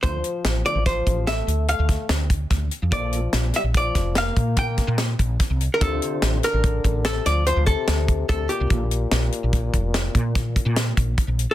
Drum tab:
HH |xxxxxxxxxxxxxx|xxxxxxxxxxxxxx|xxxxxxxxxxxxxx|xxxxxxxxxxxxxx|
SD |--o-o-o--oo-o-|--oo-oo-ooo-o-|--oo--oo--o---|--o---o-o-o---|
BD |o---oo---o-oo-|o---oo-ooo-oo-|o---oo---o-oo-|o---oo-ooo-oo-|